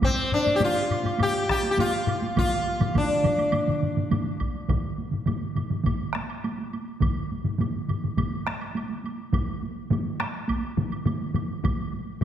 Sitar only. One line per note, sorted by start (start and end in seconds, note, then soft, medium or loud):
0.04 0.33 C4 medium
0.34 0.56 D4 medium
0.56 0.62 G4 medium
0.64 1.17 F4 medium
1.23 1.50 G4 medium
1.51 1.70 G4 medium
1.71 1.78 G4 medium
1.80 2.37 F4 medium
2.39 2.97 F4 medium
2.98 4.38 D4 medium